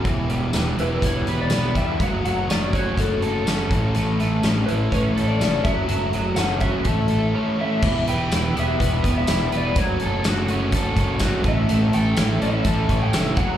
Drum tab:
CC |--------|--------|--------|--------|
HH |xxxxxxxx|xxxxxxxx|xxxxxxxx|xxxxxx--|
TB |--x---x-|--x---x-|--x---x-|--x-----|
SD |--o---o-|--o---o-|-oo---o-|--o-----|
BD |o---o--o|o--oo--o|----o--o|---oo---|

CC |x-------|--------|--------|
HH |-xxxxxxx|xxxxxxxx|xxxxxxxx|
TB |--x---x-|--x---x-|--x---x-|
SD |--o---o-|--o---o-|--o---o-|
BD |o---oo--|o---oooo|----oo-o|